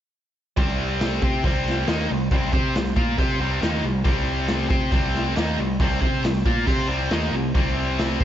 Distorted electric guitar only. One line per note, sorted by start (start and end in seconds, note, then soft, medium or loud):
0.57 1.22 C3 medium
0.57 1.23 G3 medium
0.57 1.22 C4 loud
1.23 1.44 C4 medium
1.23 1.44 G4 loud
1.23 1.45 C5 medium
1.45 1.87 C3 medium
1.45 1.87 G3 medium
1.45 1.88 C4 medium
1.87 2.09 D#3 medium
1.87 2.09 A#3 loud
1.87 2.09 D#4 loud
2.09 2.27 C3 medium
2.09 2.27 G3 medium
2.32 2.53 C3 medium
2.32 2.52 G3 medium
2.32 2.52 C4 medium
2.53 2.74 C4 medium
2.53 2.74 G4 loud
2.53 2.75 C5 loud
2.75 2.93 C3 medium
2.75 2.93 G3 medium
2.96 3.18 A#3 medium
2.96 3.18 F4 loud
2.96 3.18 A#4 medium
3.18 3.40 C4 medium
3.18 3.40 G4 loud
3.18 3.40 C5 medium
3.40 3.61 C3 medium
3.40 3.62 G3 medium
3.40 3.62 C4 loud
3.62 3.83 D#3 medium
3.62 3.83 A#3 medium
3.62 3.84 D#4 loud
3.83 4.01 C3 medium
3.83 4.01 G3 medium
4.05 4.70 C3 medium
4.05 4.69 G3 medium
4.05 4.68 C4 loud
4.69 4.92 C4 medium
4.69 4.92 G4 medium
4.69 4.92 C5 loud
4.92 5.35 C3 medium
4.92 5.36 G3 medium
4.92 5.37 C4 medium
5.36 5.58 D#3 medium
5.36 5.58 A#3 medium
5.36 5.58 D#4 medium
5.58 5.76 C3 medium
5.58 5.76 G3 medium
5.81 6.02 C3 medium
5.81 6.01 G3 loud
5.81 6.00 C4 loud
6.01 6.23 C4 medium
6.01 6.23 G4 medium
6.01 6.24 C5 loud
6.24 6.42 C3 medium
6.24 6.42 G3 medium
6.46 6.66 A#3 medium
6.46 6.67 F4 medium
6.46 6.67 A#4 medium
6.67 6.88 C4 medium
6.67 6.89 G4 medium
6.67 6.89 C5 medium
6.88 7.10 C3 medium
6.88 7.11 G3 loud
6.88 7.11 C4 loud
7.11 7.33 D#3 medium
7.11 7.33 A#3 loud
7.11 7.34 D#4 loud
7.34 7.51 C3 medium
7.34 7.51 G3 medium
7.55 8.20 C3 medium
7.55 8.19 G3 medium
7.55 8.19 C4 loud
8.20 8.24 C4 medium
8.20 8.24 G4 medium
8.20 8.24 C5 medium